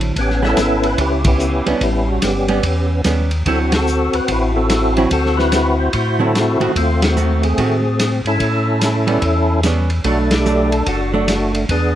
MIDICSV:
0, 0, Header, 1, 5, 480
1, 0, Start_track
1, 0, Tempo, 411805
1, 189, Time_signature, 4, 2, 24, 8
1, 13930, End_track
2, 0, Start_track
2, 0, Title_t, "Tonewheel organ"
2, 0, Program_c, 0, 16
2, 215, Note_on_c, 0, 59, 70
2, 222, Note_on_c, 0, 61, 75
2, 241, Note_on_c, 0, 67, 88
2, 368, Note_off_c, 0, 67, 0
2, 509, Note_off_c, 0, 61, 0
2, 519, Note_on_c, 0, 64, 70
2, 523, Note_on_c, 0, 61, 65
2, 533, Note_on_c, 0, 69, 122
2, 1010, Note_off_c, 0, 69, 0
2, 1010, Note_on_c, 0, 71, 97
2, 1117, Note_off_c, 0, 59, 0
2, 1155, Note_off_c, 0, 71, 0
2, 1156, Note_off_c, 0, 64, 0
2, 1170, Note_on_c, 0, 64, 64
2, 1173, Note_on_c, 0, 67, 68
2, 1177, Note_on_c, 0, 71, 92
2, 1310, Note_off_c, 0, 71, 0
2, 1426, Note_off_c, 0, 61, 0
2, 1475, Note_off_c, 0, 67, 0
2, 1481, Note_on_c, 0, 59, 67
2, 1484, Note_on_c, 0, 61, 73
2, 1489, Note_on_c, 0, 67, 86
2, 1969, Note_off_c, 0, 67, 0
2, 1984, Note_on_c, 0, 62, 75
2, 2075, Note_off_c, 0, 64, 0
2, 2124, Note_off_c, 0, 61, 0
2, 2131, Note_on_c, 0, 64, 82
2, 2138, Note_off_c, 0, 62, 0
2, 2138, Note_on_c, 0, 55, 63
2, 2138, Note_on_c, 0, 61, 62
2, 2385, Note_off_c, 0, 59, 0
2, 2424, Note_on_c, 0, 66, 84
2, 2439, Note_off_c, 0, 64, 0
2, 2594, Note_off_c, 0, 61, 0
2, 2599, Note_off_c, 0, 66, 0
2, 2606, Note_on_c, 0, 67, 76
2, 2608, Note_on_c, 0, 61, 55
2, 2612, Note_on_c, 0, 59, 55
2, 3039, Note_off_c, 0, 55, 0
2, 3342, Note_off_c, 0, 67, 0
2, 3515, Note_off_c, 0, 61, 0
2, 3516, Note_off_c, 0, 59, 0
2, 4054, Note_on_c, 0, 69, 93
2, 4055, Note_on_c, 0, 60, 65
2, 4059, Note_on_c, 0, 66, 59
2, 4189, Note_off_c, 0, 69, 0
2, 4355, Note_off_c, 0, 66, 0
2, 4361, Note_off_c, 0, 60, 0
2, 4364, Note_on_c, 0, 69, 106
2, 4369, Note_on_c, 0, 66, 58
2, 4375, Note_on_c, 0, 60, 64
2, 4838, Note_on_c, 0, 71, 90
2, 4847, Note_off_c, 0, 69, 0
2, 4990, Note_off_c, 0, 71, 0
2, 5027, Note_off_c, 0, 66, 0
2, 5032, Note_on_c, 0, 71, 85
2, 5041, Note_on_c, 0, 64, 60
2, 5041, Note_on_c, 0, 66, 60
2, 5163, Note_off_c, 0, 71, 0
2, 5272, Note_off_c, 0, 60, 0
2, 5307, Note_off_c, 0, 66, 0
2, 5316, Note_on_c, 0, 69, 114
2, 5321, Note_on_c, 0, 66, 64
2, 5326, Note_on_c, 0, 60, 69
2, 5756, Note_off_c, 0, 69, 0
2, 5931, Note_off_c, 0, 64, 0
2, 5954, Note_off_c, 0, 60, 0
2, 5959, Note_off_c, 0, 66, 0
2, 5968, Note_on_c, 0, 60, 64
2, 5973, Note_on_c, 0, 66, 69
2, 5973, Note_on_c, 0, 69, 99
2, 6250, Note_off_c, 0, 66, 0
2, 6260, Note_on_c, 0, 71, 105
2, 6264, Note_on_c, 0, 66, 66
2, 6267, Note_on_c, 0, 64, 65
2, 6281, Note_off_c, 0, 69, 0
2, 6708, Note_off_c, 0, 71, 0
2, 6747, Note_on_c, 0, 72, 101
2, 6874, Note_off_c, 0, 60, 0
2, 6904, Note_off_c, 0, 72, 0
2, 6914, Note_off_c, 0, 66, 0
2, 6915, Note_off_c, 0, 64, 0
2, 6918, Note_on_c, 0, 72, 84
2, 6928, Note_on_c, 0, 66, 70
2, 6929, Note_on_c, 0, 64, 64
2, 7224, Note_off_c, 0, 66, 0
2, 7230, Note_on_c, 0, 69, 104
2, 7234, Note_off_c, 0, 72, 0
2, 7238, Note_on_c, 0, 66, 73
2, 7240, Note_on_c, 0, 60, 70
2, 7673, Note_off_c, 0, 69, 0
2, 7835, Note_off_c, 0, 64, 0
2, 7837, Note_off_c, 0, 66, 0
2, 7838, Note_off_c, 0, 60, 0
2, 7894, Note_on_c, 0, 57, 65
2, 7894, Note_on_c, 0, 65, 87
2, 7900, Note_on_c, 0, 60, 61
2, 8177, Note_off_c, 0, 60, 0
2, 8179, Note_off_c, 0, 57, 0
2, 8187, Note_on_c, 0, 66, 93
2, 8191, Note_on_c, 0, 60, 59
2, 8193, Note_on_c, 0, 57, 59
2, 8202, Note_off_c, 0, 65, 0
2, 8656, Note_off_c, 0, 60, 0
2, 8670, Note_on_c, 0, 60, 66
2, 8678, Note_on_c, 0, 68, 97
2, 8679, Note_off_c, 0, 66, 0
2, 9101, Note_off_c, 0, 57, 0
2, 9314, Note_off_c, 0, 68, 0
2, 9328, Note_on_c, 0, 68, 86
2, 9464, Note_off_c, 0, 68, 0
2, 9579, Note_off_c, 0, 60, 0
2, 9642, Note_on_c, 0, 61, 62
2, 9643, Note_on_c, 0, 64, 69
2, 9651, Note_on_c, 0, 69, 100
2, 11195, Note_off_c, 0, 61, 0
2, 11195, Note_off_c, 0, 64, 0
2, 11200, Note_off_c, 0, 69, 0
2, 11726, Note_on_c, 0, 57, 65
2, 11729, Note_on_c, 0, 62, 60
2, 11745, Note_on_c, 0, 66, 87
2, 11876, Note_off_c, 0, 66, 0
2, 12024, Note_off_c, 0, 62, 0
2, 12038, Note_on_c, 0, 62, 61
2, 12045, Note_on_c, 0, 67, 100
2, 12479, Note_off_c, 0, 67, 0
2, 12516, Note_on_c, 0, 69, 80
2, 12630, Note_off_c, 0, 57, 0
2, 12673, Note_off_c, 0, 62, 0
2, 12683, Note_off_c, 0, 69, 0
2, 12687, Note_on_c, 0, 62, 61
2, 12687, Note_on_c, 0, 66, 60
2, 12701, Note_on_c, 0, 69, 83
2, 12832, Note_off_c, 0, 69, 0
2, 12970, Note_off_c, 0, 62, 0
2, 12979, Note_off_c, 0, 66, 0
2, 12982, Note_on_c, 0, 57, 68
2, 12984, Note_on_c, 0, 62, 59
2, 12993, Note_on_c, 0, 66, 95
2, 13432, Note_off_c, 0, 66, 0
2, 13585, Note_off_c, 0, 57, 0
2, 13586, Note_off_c, 0, 62, 0
2, 13643, Note_on_c, 0, 59, 69
2, 13650, Note_on_c, 0, 68, 95
2, 13654, Note_on_c, 0, 62, 67
2, 13927, Note_off_c, 0, 68, 0
2, 13930, Note_off_c, 0, 59, 0
2, 13930, Note_off_c, 0, 62, 0
2, 13930, End_track
3, 0, Start_track
3, 0, Title_t, "Hollow-body jazz guitar"
3, 0, Program_c, 1, 26
3, 0, Note_on_c, 1, 50, 52
3, 0, Note_on_c, 1, 54, 56
3, 0, Note_on_c, 1, 60, 55
3, 0, Note_on_c, 1, 64, 58
3, 157, Note_off_c, 1, 50, 0
3, 162, Note_off_c, 1, 54, 0
3, 163, Note_off_c, 1, 60, 0
3, 164, Note_off_c, 1, 64, 0
3, 497, Note_on_c, 1, 55, 66
3, 500, Note_on_c, 1, 59, 67
3, 512, Note_on_c, 1, 61, 62
3, 652, Note_off_c, 1, 55, 0
3, 653, Note_off_c, 1, 59, 0
3, 660, Note_off_c, 1, 61, 0
3, 1940, Note_on_c, 1, 55, 60
3, 1952, Note_on_c, 1, 59, 66
3, 1955, Note_on_c, 1, 61, 75
3, 2095, Note_off_c, 1, 55, 0
3, 2100, Note_off_c, 1, 59, 0
3, 2102, Note_off_c, 1, 61, 0
3, 2900, Note_on_c, 1, 55, 67
3, 2903, Note_on_c, 1, 59, 73
3, 2914, Note_on_c, 1, 61, 84
3, 3055, Note_off_c, 1, 55, 0
3, 3056, Note_off_c, 1, 59, 0
3, 3062, Note_off_c, 1, 61, 0
3, 3552, Note_on_c, 1, 55, 55
3, 3553, Note_on_c, 1, 59, 56
3, 3564, Note_on_c, 1, 61, 62
3, 3831, Note_off_c, 1, 55, 0
3, 3831, Note_off_c, 1, 59, 0
3, 3837, Note_off_c, 1, 61, 0
3, 4041, Note_on_c, 1, 50, 56
3, 4043, Note_on_c, 1, 54, 57
3, 4053, Note_on_c, 1, 60, 54
3, 4057, Note_on_c, 1, 64, 64
3, 4315, Note_off_c, 1, 50, 0
3, 4316, Note_off_c, 1, 54, 0
3, 4321, Note_off_c, 1, 60, 0
3, 4323, Note_off_c, 1, 64, 0
3, 5799, Note_on_c, 1, 54, 66
3, 5802, Note_on_c, 1, 50, 63
3, 5804, Note_on_c, 1, 60, 69
3, 5806, Note_on_c, 1, 64, 68
3, 5945, Note_off_c, 1, 54, 0
3, 5947, Note_off_c, 1, 50, 0
3, 5948, Note_off_c, 1, 60, 0
3, 5949, Note_off_c, 1, 64, 0
3, 7215, Note_on_c, 1, 50, 57
3, 7223, Note_on_c, 1, 54, 67
3, 7230, Note_on_c, 1, 60, 65
3, 7235, Note_on_c, 1, 64, 63
3, 7373, Note_off_c, 1, 50, 0
3, 7377, Note_off_c, 1, 54, 0
3, 7381, Note_off_c, 1, 60, 0
3, 7383, Note_off_c, 1, 64, 0
3, 7695, Note_on_c, 1, 51, 59
3, 7702, Note_on_c, 1, 57, 64
3, 7708, Note_on_c, 1, 60, 61
3, 7713, Note_on_c, 1, 66, 72
3, 7853, Note_off_c, 1, 51, 0
3, 7857, Note_off_c, 1, 57, 0
3, 7859, Note_off_c, 1, 60, 0
3, 7862, Note_off_c, 1, 66, 0
3, 8353, Note_on_c, 1, 51, 48
3, 8357, Note_on_c, 1, 57, 54
3, 8358, Note_on_c, 1, 60, 51
3, 8367, Note_on_c, 1, 66, 53
3, 8631, Note_off_c, 1, 51, 0
3, 8633, Note_off_c, 1, 57, 0
3, 8633, Note_off_c, 1, 60, 0
3, 8638, Note_off_c, 1, 66, 0
3, 8840, Note_on_c, 1, 51, 57
3, 8847, Note_on_c, 1, 57, 62
3, 8850, Note_on_c, 1, 60, 66
3, 8854, Note_on_c, 1, 66, 67
3, 9114, Note_off_c, 1, 51, 0
3, 9118, Note_off_c, 1, 57, 0
3, 9119, Note_off_c, 1, 60, 0
3, 9121, Note_off_c, 1, 66, 0
3, 10574, Note_on_c, 1, 55, 74
3, 10581, Note_on_c, 1, 59, 68
3, 10590, Note_on_c, 1, 61, 68
3, 10731, Note_off_c, 1, 55, 0
3, 10735, Note_off_c, 1, 59, 0
3, 10739, Note_off_c, 1, 61, 0
3, 11235, Note_on_c, 1, 55, 57
3, 11246, Note_on_c, 1, 59, 66
3, 11252, Note_on_c, 1, 61, 69
3, 11511, Note_off_c, 1, 55, 0
3, 11516, Note_off_c, 1, 59, 0
3, 11519, Note_off_c, 1, 61, 0
3, 11709, Note_on_c, 1, 54, 54
3, 11711, Note_on_c, 1, 57, 64
3, 11721, Note_on_c, 1, 62, 56
3, 11988, Note_off_c, 1, 54, 0
3, 11988, Note_off_c, 1, 57, 0
3, 11994, Note_off_c, 1, 62, 0
3, 12189, Note_on_c, 1, 54, 59
3, 12196, Note_on_c, 1, 57, 64
3, 12209, Note_on_c, 1, 62, 68
3, 12467, Note_off_c, 1, 54, 0
3, 12471, Note_off_c, 1, 57, 0
3, 12477, Note_off_c, 1, 62, 0
3, 12979, Note_on_c, 1, 54, 72
3, 12986, Note_on_c, 1, 57, 63
3, 12989, Note_on_c, 1, 62, 76
3, 13133, Note_off_c, 1, 54, 0
3, 13136, Note_off_c, 1, 57, 0
3, 13137, Note_off_c, 1, 62, 0
3, 13930, End_track
4, 0, Start_track
4, 0, Title_t, "Tonewheel organ"
4, 0, Program_c, 2, 16
4, 0, Note_on_c, 2, 33, 74
4, 140, Note_off_c, 2, 33, 0
4, 188, Note_on_c, 2, 33, 83
4, 636, Note_off_c, 2, 33, 0
4, 669, Note_on_c, 2, 32, 73
4, 1117, Note_off_c, 2, 32, 0
4, 1142, Note_on_c, 2, 37, 76
4, 1889, Note_off_c, 2, 37, 0
4, 1946, Note_on_c, 2, 37, 33
4, 2030, Note_off_c, 2, 37, 0
4, 2108, Note_on_c, 2, 33, 80
4, 2557, Note_off_c, 2, 33, 0
4, 2596, Note_on_c, 2, 31, 72
4, 3042, Note_off_c, 2, 31, 0
4, 3068, Note_on_c, 2, 40, 84
4, 3517, Note_off_c, 2, 40, 0
4, 3554, Note_on_c, 2, 39, 78
4, 4000, Note_off_c, 2, 39, 0
4, 4029, Note_on_c, 2, 38, 80
4, 4774, Note_off_c, 2, 38, 0
4, 4818, Note_on_c, 2, 38, 33
4, 4905, Note_off_c, 2, 38, 0
4, 4993, Note_on_c, 2, 33, 83
4, 5907, Note_off_c, 2, 33, 0
4, 5958, Note_on_c, 2, 38, 83
4, 6869, Note_off_c, 2, 38, 0
4, 6918, Note_on_c, 2, 45, 81
4, 7658, Note_off_c, 2, 45, 0
4, 7701, Note_on_c, 2, 45, 38
4, 7787, Note_off_c, 2, 45, 0
4, 7876, Note_on_c, 2, 39, 85
4, 8788, Note_off_c, 2, 39, 0
4, 8833, Note_on_c, 2, 45, 83
4, 9574, Note_off_c, 2, 45, 0
4, 9614, Note_on_c, 2, 44, 63
4, 9777, Note_off_c, 2, 44, 0
4, 9792, Note_on_c, 2, 45, 85
4, 10705, Note_off_c, 2, 45, 0
4, 10751, Note_on_c, 2, 40, 87
4, 11664, Note_off_c, 2, 40, 0
4, 11709, Note_on_c, 2, 35, 77
4, 12622, Note_off_c, 2, 35, 0
4, 12668, Note_on_c, 2, 30, 78
4, 13581, Note_off_c, 2, 30, 0
4, 13627, Note_on_c, 2, 40, 79
4, 13930, Note_off_c, 2, 40, 0
4, 13930, End_track
5, 0, Start_track
5, 0, Title_t, "Drums"
5, 11, Note_on_c, 9, 51, 45
5, 127, Note_off_c, 9, 51, 0
5, 186, Note_on_c, 9, 36, 30
5, 190, Note_on_c, 9, 51, 58
5, 303, Note_off_c, 9, 36, 0
5, 306, Note_off_c, 9, 51, 0
5, 349, Note_on_c, 9, 38, 27
5, 466, Note_off_c, 9, 38, 0
5, 509, Note_on_c, 9, 38, 42
5, 626, Note_off_c, 9, 38, 0
5, 662, Note_on_c, 9, 44, 58
5, 662, Note_on_c, 9, 51, 60
5, 664, Note_on_c, 9, 38, 61
5, 779, Note_off_c, 9, 44, 0
5, 779, Note_off_c, 9, 51, 0
5, 781, Note_off_c, 9, 38, 0
5, 972, Note_on_c, 9, 51, 47
5, 1088, Note_off_c, 9, 51, 0
5, 1144, Note_on_c, 9, 51, 60
5, 1145, Note_on_c, 9, 36, 34
5, 1260, Note_off_c, 9, 51, 0
5, 1262, Note_off_c, 9, 36, 0
5, 1451, Note_on_c, 9, 51, 78
5, 1455, Note_on_c, 9, 36, 89
5, 1568, Note_off_c, 9, 51, 0
5, 1572, Note_off_c, 9, 36, 0
5, 1625, Note_on_c, 9, 44, 56
5, 1741, Note_off_c, 9, 44, 0
5, 1940, Note_on_c, 9, 51, 47
5, 2057, Note_off_c, 9, 51, 0
5, 2110, Note_on_c, 9, 36, 34
5, 2111, Note_on_c, 9, 51, 58
5, 2226, Note_off_c, 9, 36, 0
5, 2227, Note_off_c, 9, 51, 0
5, 2587, Note_on_c, 9, 44, 49
5, 2587, Note_on_c, 9, 51, 73
5, 2589, Note_on_c, 9, 38, 64
5, 2703, Note_off_c, 9, 44, 0
5, 2703, Note_off_c, 9, 51, 0
5, 2706, Note_off_c, 9, 38, 0
5, 2894, Note_on_c, 9, 51, 44
5, 3011, Note_off_c, 9, 51, 0
5, 3068, Note_on_c, 9, 51, 62
5, 3069, Note_on_c, 9, 36, 32
5, 3184, Note_off_c, 9, 51, 0
5, 3186, Note_off_c, 9, 36, 0
5, 3547, Note_on_c, 9, 44, 56
5, 3547, Note_on_c, 9, 51, 62
5, 3549, Note_on_c, 9, 38, 62
5, 3663, Note_off_c, 9, 44, 0
5, 3663, Note_off_c, 9, 51, 0
5, 3666, Note_off_c, 9, 38, 0
5, 3857, Note_on_c, 9, 51, 46
5, 3973, Note_off_c, 9, 51, 0
5, 4031, Note_on_c, 9, 36, 36
5, 4031, Note_on_c, 9, 51, 61
5, 4147, Note_off_c, 9, 36, 0
5, 4148, Note_off_c, 9, 51, 0
5, 4336, Note_on_c, 9, 51, 61
5, 4338, Note_on_c, 9, 38, 75
5, 4453, Note_off_c, 9, 51, 0
5, 4455, Note_off_c, 9, 38, 0
5, 4512, Note_on_c, 9, 44, 63
5, 4628, Note_off_c, 9, 44, 0
5, 4818, Note_on_c, 9, 51, 48
5, 4934, Note_off_c, 9, 51, 0
5, 4990, Note_on_c, 9, 51, 62
5, 4994, Note_on_c, 9, 36, 31
5, 5107, Note_off_c, 9, 51, 0
5, 5110, Note_off_c, 9, 36, 0
5, 5473, Note_on_c, 9, 44, 57
5, 5473, Note_on_c, 9, 51, 68
5, 5476, Note_on_c, 9, 38, 62
5, 5590, Note_off_c, 9, 44, 0
5, 5590, Note_off_c, 9, 51, 0
5, 5592, Note_off_c, 9, 38, 0
5, 5788, Note_on_c, 9, 51, 43
5, 5905, Note_off_c, 9, 51, 0
5, 5954, Note_on_c, 9, 51, 61
5, 5959, Note_on_c, 9, 36, 30
5, 6071, Note_off_c, 9, 51, 0
5, 6075, Note_off_c, 9, 36, 0
5, 6126, Note_on_c, 9, 38, 25
5, 6243, Note_off_c, 9, 38, 0
5, 6279, Note_on_c, 9, 38, 47
5, 6396, Note_off_c, 9, 38, 0
5, 6433, Note_on_c, 9, 44, 56
5, 6433, Note_on_c, 9, 51, 64
5, 6435, Note_on_c, 9, 38, 68
5, 6550, Note_off_c, 9, 44, 0
5, 6550, Note_off_c, 9, 51, 0
5, 6552, Note_off_c, 9, 38, 0
5, 6912, Note_on_c, 9, 51, 61
5, 6918, Note_on_c, 9, 36, 30
5, 7028, Note_off_c, 9, 51, 0
5, 7035, Note_off_c, 9, 36, 0
5, 7404, Note_on_c, 9, 44, 51
5, 7404, Note_on_c, 9, 51, 60
5, 7407, Note_on_c, 9, 38, 68
5, 7521, Note_off_c, 9, 44, 0
5, 7521, Note_off_c, 9, 51, 0
5, 7523, Note_off_c, 9, 38, 0
5, 7704, Note_on_c, 9, 51, 44
5, 7820, Note_off_c, 9, 51, 0
5, 7876, Note_on_c, 9, 36, 32
5, 7881, Note_on_c, 9, 51, 57
5, 7993, Note_off_c, 9, 36, 0
5, 7997, Note_off_c, 9, 51, 0
5, 8185, Note_on_c, 9, 51, 67
5, 8187, Note_on_c, 9, 38, 84
5, 8301, Note_off_c, 9, 51, 0
5, 8304, Note_off_c, 9, 38, 0
5, 8355, Note_on_c, 9, 44, 47
5, 8471, Note_off_c, 9, 44, 0
5, 8663, Note_on_c, 9, 51, 49
5, 8780, Note_off_c, 9, 51, 0
5, 8833, Note_on_c, 9, 36, 32
5, 8833, Note_on_c, 9, 51, 57
5, 8949, Note_off_c, 9, 51, 0
5, 8950, Note_off_c, 9, 36, 0
5, 9318, Note_on_c, 9, 44, 55
5, 9318, Note_on_c, 9, 51, 68
5, 9321, Note_on_c, 9, 38, 63
5, 9435, Note_off_c, 9, 44, 0
5, 9435, Note_off_c, 9, 51, 0
5, 9437, Note_off_c, 9, 38, 0
5, 9624, Note_on_c, 9, 51, 42
5, 9740, Note_off_c, 9, 51, 0
5, 9791, Note_on_c, 9, 36, 32
5, 9792, Note_on_c, 9, 51, 55
5, 9908, Note_off_c, 9, 36, 0
5, 9908, Note_off_c, 9, 51, 0
5, 10274, Note_on_c, 9, 44, 57
5, 10274, Note_on_c, 9, 51, 66
5, 10276, Note_on_c, 9, 38, 68
5, 10390, Note_off_c, 9, 44, 0
5, 10390, Note_off_c, 9, 51, 0
5, 10392, Note_off_c, 9, 38, 0
5, 10577, Note_on_c, 9, 51, 50
5, 10694, Note_off_c, 9, 51, 0
5, 10745, Note_on_c, 9, 51, 59
5, 10747, Note_on_c, 9, 36, 31
5, 10862, Note_off_c, 9, 51, 0
5, 10864, Note_off_c, 9, 36, 0
5, 11228, Note_on_c, 9, 44, 51
5, 11228, Note_on_c, 9, 51, 56
5, 11230, Note_on_c, 9, 38, 61
5, 11344, Note_off_c, 9, 44, 0
5, 11344, Note_off_c, 9, 51, 0
5, 11347, Note_off_c, 9, 38, 0
5, 11537, Note_on_c, 9, 51, 43
5, 11654, Note_off_c, 9, 51, 0
5, 11706, Note_on_c, 9, 51, 60
5, 11710, Note_on_c, 9, 36, 34
5, 11823, Note_off_c, 9, 51, 0
5, 11826, Note_off_c, 9, 36, 0
5, 12014, Note_on_c, 9, 51, 64
5, 12017, Note_on_c, 9, 38, 78
5, 12131, Note_off_c, 9, 51, 0
5, 12133, Note_off_c, 9, 38, 0
5, 12186, Note_on_c, 9, 44, 46
5, 12303, Note_off_c, 9, 44, 0
5, 12497, Note_on_c, 9, 51, 51
5, 12614, Note_off_c, 9, 51, 0
5, 12663, Note_on_c, 9, 51, 61
5, 12667, Note_on_c, 9, 36, 32
5, 12779, Note_off_c, 9, 51, 0
5, 12784, Note_off_c, 9, 36, 0
5, 13146, Note_on_c, 9, 44, 57
5, 13146, Note_on_c, 9, 51, 68
5, 13149, Note_on_c, 9, 38, 68
5, 13263, Note_off_c, 9, 44, 0
5, 13263, Note_off_c, 9, 51, 0
5, 13265, Note_off_c, 9, 38, 0
5, 13458, Note_on_c, 9, 51, 50
5, 13574, Note_off_c, 9, 51, 0
5, 13627, Note_on_c, 9, 36, 32
5, 13627, Note_on_c, 9, 51, 59
5, 13743, Note_off_c, 9, 36, 0
5, 13743, Note_off_c, 9, 51, 0
5, 13930, End_track
0, 0, End_of_file